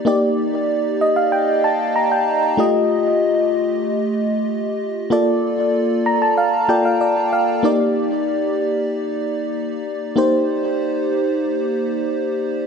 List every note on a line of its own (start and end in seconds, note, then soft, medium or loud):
0.05 2.54 A#3 medium
0.05 2.55 D#4 medium
0.05 2.55 G4 medium
0.05 2.55 D5 medium
1.01 1.16 D#5 medium
1.16 1.31 F5 medium
1.32 1.62 G5 medium
1.64 1.93 A5 medium
1.96 2.10 A#5 medium
2.12 2.56 G5 medium
2.57 5.07 A3 medium
2.57 5.07 F4 medium
2.57 5.07 G4 medium
2.57 5.08 D#5 medium
5.10 6.65 A#3 medium
5.10 6.66 F4 medium
5.10 6.66 A4 medium
5.10 6.67 D5 medium
6.06 6.21 A#5 medium
6.22 6.37 A5 medium
6.37 6.67 F5 medium
6.68 7.62 A#3 medium
6.68 7.64 F4 soft
6.68 7.64 A4 soft
6.68 7.00 D5 medium
6.68 6.84 G5 medium
6.85 7.00 F5 medium
7.01 7.30 D5 medium
7.33 7.62 F5 medium
7.63 10.12 A#3 medium
7.63 10.13 D#4 medium
7.63 10.13 G4 medium
7.63 10.13 D5 medium
10.16 12.65 A#3 medium
10.16 12.65 D#4 medium
10.16 12.66 G4 medium
10.16 12.66 C5 medium